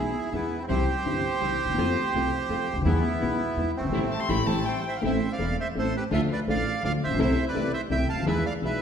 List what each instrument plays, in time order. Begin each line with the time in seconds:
Already playing: upright piano B1 B2 E3 G#3 B3 G#4, upright bass B1, string section G#3 B3 E4, bandoneon E4 G#4
0.31 upright bass E2, upright piano E2 E3 G#3 B3 G#4, string section G#3 B3 E4, bandoneon B3 E4
0.59 bandoneon C4 E4
0.68 upright bass C2, upright piano C2 C3 E3 G3 C4 G4, string section G3 C4 E4, bandoneon G4 C5
1.05 upright bass G1, upright piano G1 G2 E3 G3 C4 G4, string section G3 C4 E4
1.41 upright piano C2 C3 E3 G3 C4 G4, upright bass C2, string section G3 C4 E4
1.64 upright piano D2, upright bass D2
1.69 upright piano D#2, upright bass D#2
1.74 upright piano E2 F2 F3 A3 C4, upright bass E2
1.78 upright bass F2, string section A3 C4 F4, upright piano A4
2.14 upright bass C2, upright piano C2 C3 F3 A3 C4 A4, string section A3 C4 F4
2.49 upright bass F2, upright piano F2 F3 A3 C4 A4, string section A3 C4 F4
2.73 upright piano C#2, upright bass C#2
2.77 upright piano D2, upright bass D2 D#2
2.82 upright piano D#2, upright bass E2, string section G#3, bandoneon E4
2.86 upright piano E2 E3 G#3 B3 G#4, string section B3 E4, bandoneon B3
3.21 upright bass B1, upright piano B1 B2 E3 G#3 B3 G#4, string section G#3 B3 E4
3.56 upright bass E2, upright piano E2 E3 G#3 B3 G#4, string section G#3 B3 E4
3.76 upright bass F#1, upright piano F#1, bandoneon A3 C4
3.84 upright bass G1, upright piano G1
3.89 upright bass G#1, upright piano G#1 E3 G3 A3
3.94 upright bass A1, string section A3 C4 E4
4.12 violin A5
4.20 violin C6
4.29 upright bass A1, upright piano E3 G3 A3, string section A3 C4 E4, violin B5
4.46 upright bass A1, upright piano E3 G3 A3, string section A3 C4 E4, violin A5
4.65 bandoneon A4 C5, violin G5
4.87 bandoneon C5 E5
4.97 bandoneon F5
5.01 upright piano A1 A2 E3 A3 C4 A4, upright bass A1, string section A3 C4 E4
5.06 bandoneon C5 E5
5.32 bandoneon D5 F5
5.38 upright bass E1, upright piano E1 E2 E3 A3 C4 A4, string section A3 C4 E4
5.60 bandoneon C5 E5
5.75 upright bass A1, upright piano A1 A2 E3 A3 C4 A4, string section A3 C4 E4, bandoneon A4 C5
5.97 bandoneon G4 B4
6.11 upright piano D2 D3 F3 A3 D4 A4, upright bass D2, string section A3 D4 F4, bandoneon A4 E5
6.33 bandoneon B4 D5
6.47 upright bass A1, upright piano A1 A2 F3 A3 D4 A4, string section A3 D4 F4, bandoneon D5 F5
6.83 upright bass D2, upright piano D2 D3 F3 A3 D4 A4, string section A3 D4 F4, bandoneon D5 F5
7.04 upright bass A1, upright piano A1, bandoneon C5 E5
7.09 upright bass A#1, upright piano A#1
7.14 upright bass B1, upright piano B1
7.19 upright bass C2, upright piano C2 C3 E3 A3 C4 A4, string section A3 C4 E4, bandoneon C5 E5
7.48 bandoneon B4 D5
7.54 upright bass C2, upright piano C2 C3 E3 A3 C4 A4, string section A3 C4 E4
7.73 bandoneon C5 E5
7.90 upright piano C2 C3 E3 A3 C4 A4, upright bass C2, string section A3 C4 E4, bandoneon E5 G5
8.09 upright bass C#2, upright piano C#2, bandoneon F5 A5
8.18 upright bass D2, upright piano D2
8.22 upright bass D#2, upright piano D#2 E2 E3 G#3 B3, string section G#3
8.26 upright bass E2, string section B3 E4, upright piano G#4, bandoneon B4 E5
8.46 bandoneon D5 F5
8.62 upright bass B1, upright piano B1 B2 E3 G#3 B3 G#4, string section G#3 B3 E4, bandoneon B4 E5